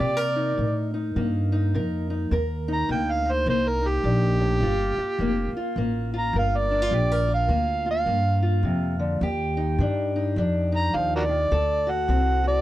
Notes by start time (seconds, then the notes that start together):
Already playing: A#3 D5
0.00 C3 G4
0.17 A#4
0.36 D#4
0.57 A2 C3
0.94 D#4
1.16 G2 C3 A#3
1.52 D#4
1.74 F2 C3 A#4
2.10 D#4
2.31 D#2 C3 A#4
2.68 D#4
2.73 A#5
2.89 D2 C3 A#3 G5
3.12 F5
3.25 D#4
3.32 C5
3.46 C2 C3 A#3 C5
3.68 A#4
3.82 D#4
3.88 G4
4.04 A#1 A#2
4.40 A2
4.61 G1 G2 F4
4.97 F4, muted upright bass stroke
5.19 F1 G2 A#3
5.53 F4, muted upright bass stroke
5.76 A1 G2 A#3
6.14 F4
6.19 A#5
6.33 G1 G2 A#4
6.38 F5
6.57 D5
6.71 D4
6.82 F4
6.91 A#1 G2 G4
7.12 A#4
7.28 F4
7.34 F5
7.48 D2 G2 A#3
7.86 F4
7.91 F5
8.06 G2 A#3
8.43 F4
8.63 F2 C3
8.99 D3
9.21 D#2 D#3 G4
9.57 D#4
9.79 G2 D#3 D4
10.16 D#4
10.36 F2 D#3 D4
10.72 D#4 A#5
10.94 D#2 F3 F5
11.16 F#4 A#4 D5
11.29 D#3
11.51 D2 D3 A4
11.87 F#4 F#5
12.08 C2 D3 C4
12.44 F#4 D5